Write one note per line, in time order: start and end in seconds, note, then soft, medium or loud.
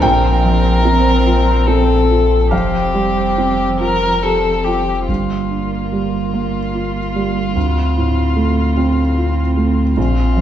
0.00 2.48 A#1 medium
0.00 2.53 A#1 medium
0.00 2.47 F3 medium
0.00 2.55 A#3 medium
0.00 2.48 C4 medium
0.00 2.51 F4 medium
0.00 1.68 A#4 medium
0.00 3.74 C5 medium
0.00 1.32 F5 medium
0.00 2.47 G5 loud
0.23 0.62 C6 medium
0.44 1.09 F3 soft
0.64 1.25 C6 medium
0.85 1.51 C4 medium
1.26 1.93 F4 medium
1.26 1.45 C6 medium
1.47 2.29 C6 medium
1.67 2.35 C4 medium
1.67 2.52 A4 medium
1.88 2.94 F5 medium
2.10 2.52 F4 soft
2.31 5.12 C6 medium
2.51 5.08 F1 medium
2.51 5.05 F2 medium
2.51 4.83 F3 medium
2.51 4.83 C4 medium
2.51 3.37 F4 medium
2.51 3.70 G4 medium
2.51 4.62 F5 medium
2.73 3.15 G5 soft
2.94 3.63 G3 soft
2.94 6.85 F5 soft
3.17 3.79 G5 soft
3.38 4.06 C4 soft
3.38 4.22 F4 medium
3.80 4.48 F4 soft
3.80 4.24 A#4 medium
3.80 4.00 G5 soft
4.02 4.87 G5 soft
4.22 8.13 F4 medium
4.22 4.91 G4 soft
4.22 4.66 A4 medium
4.44 5.12 C5 soft
4.64 5.09 F4 soft
4.64 5.06 G4 medium
4.88 7.59 G5 medium
5.07 7.57 G1 medium
5.07 7.52 G2 soft
5.07 7.51 A#3 soft
5.07 9.92 F4 soft
5.51 6.17 D3 soft
5.92 6.58 G3 soft
6.34 6.99 A#3 soft
6.74 7.39 F4 soft
7.15 7.56 G3 soft
7.55 9.98 D2 medium
7.55 9.92 D2 soft
7.55 10.41 C4 soft
7.97 8.61 A2 soft
8.36 9.00 A3 soft
8.77 9.41 C4 soft
9.17 9.81 F4 soft
9.57 9.97 A3 soft
9.97 10.41 A#1 medium
9.97 10.41 F4 medium
10.36 10.41 F2 soft